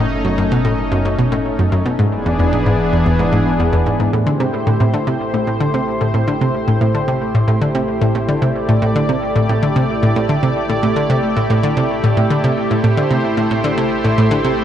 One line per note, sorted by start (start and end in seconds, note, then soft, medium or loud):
0.00 1.96 F#1 medium
0.00 1.95 A3 medium
0.00 1.95 C#4 medium
0.00 1.98 D#4 medium
0.25 0.35 F#2 medium
0.38 0.49 F#2 loud
0.52 0.59 B2 loud
0.65 0.72 A2 medium
0.92 1.03 F#2 loud
1.05 1.16 F#2 loud
1.19 1.26 B2 loud
1.32 1.39 A2 loud
1.59 1.70 F#2 medium
1.72 1.83 F#2 loud
1.86 1.93 B2 loud
1.99 4.11 E1 medium
1.99 2.06 G#2 loud
1.99 4.11 E3 medium
1.99 4.11 B3 medium
1.99 4.11 D4 medium
1.99 4.11 G#4 medium
2.26 2.37 E2 loud
2.39 2.50 E2 loud
2.53 2.60 G#2 loud
2.66 2.73 G#2 medium
2.93 3.03 E2 loud
3.06 3.17 E2 loud
3.19 3.27 G#2 loud
3.33 3.40 G#2 loud
3.59 3.70 E2 loud
3.73 3.84 E2 loud
3.86 3.94 G#2 loud
4.00 4.07 G#2 medium
4.13 12.68 A1 medium
4.13 4.24 A2 loud
4.13 14.64 A3 medium
4.13 14.64 E4 medium
4.13 14.64 G4 medium
4.13 8.40 C5 medium
4.27 4.34 D3 loud
4.40 4.47 C3 loud
4.67 4.78 A2 loud
4.80 4.91 A2 loud
4.94 5.01 D3 loud
5.07 5.14 C3 loud
5.34 5.45 A2 loud
5.47 5.58 A2 loud
5.60 5.68 D3 loud
5.74 5.81 C3 loud
6.01 6.12 A2 loud
6.14 6.25 A2 loud
6.28 6.35 D3 loud
6.41 6.48 C3 loud
6.68 6.78 A2 loud
6.81 6.92 A2 loud
6.94 7.02 D3 loud
7.08 7.15 C3 loud
7.35 7.45 A2 loud
7.48 7.59 A2 loud
7.62 7.69 D3 loud
7.75 7.82 C3 loud
8.01 8.12 A2 loud
8.15 8.26 A2 loud
8.28 8.36 D3 loud
8.42 8.49 C3 loud
8.42 12.69 D5 medium
8.69 8.79 A2 loud
8.82 8.93 A2 loud
8.96 9.03 D3 loud
9.09 9.16 C3 loud
9.36 9.46 A2 loud
9.49 9.60 A2 loud
9.63 9.70 D3 loud
9.76 9.83 C3 loud
10.03 10.13 A2 loud
10.16 10.27 A2 loud
10.29 10.36 D3 loud
10.43 10.50 C3 loud
10.69 10.80 A2 loud
10.83 10.94 A2 loud
10.96 11.03 D3 loud
11.10 11.17 C3 loud
11.36 11.47 A2 loud
11.50 11.61 A2 loud
11.63 11.70 D3 loud
11.77 11.84 C3 loud
12.04 12.14 A2 loud
12.17 12.28 A2 loud
12.30 12.38 D3 loud
12.44 12.51 C3 loud
12.70 14.64 A1 medium
12.70 12.81 A2 loud
12.70 14.64 C5 medium
12.84 12.95 A2 loud
12.97 13.04 D3 loud
13.11 13.18 C3 loud
13.37 13.48 A2 loud
13.51 13.62 A2 loud
13.64 13.71 D3 loud
13.78 13.85 C3 loud
14.04 14.15 A2 loud
14.18 14.29 A2 loud
14.31 14.38 D3 loud
14.44 14.52 C3 loud